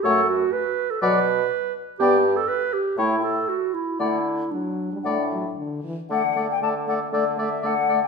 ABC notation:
X:1
M:4/4
L:1/16
Q:1/4=119
K:D
V:1 name="Flute"
f2 z6 f2 z6 | g2 z6 g2 z6 | f2 z6 f2 z6 | f3 g a2 f2 d2 e2 f3 g |]
V:2 name="Oboe"
c2 z6 d2 z6 | d2 z6 c2 z6 | d2 z6 d2 z6 | d2 d2 d2 d2 d2 d2 d2 d2 |]
V:3 name="Clarinet"
A2 F2 B3 A B6 z2 | G3 A B2 G2 E2 A2 F2 E2 | E4 D8 z4 | A2 A2 A2 A2 A2 A2 A2 A2 |]
V:4 name="French horn"
A,2 z6 F,2 z6 | B,2 z6 A,2 z6 | A,2 z2 F,3 G, A,2 F,2 D,2 E,2 | A,2 A,2 A,2 A,2 A,2 A,2 A,2 A,2 |]
V:5 name="Bassoon" clef=bass
F,,4 z4 B,,4 z4 | G,,4 z4 A,,4 z4 | D,4 z4 A,,4 z4 | D,4 D,4 D,4 D,4 |]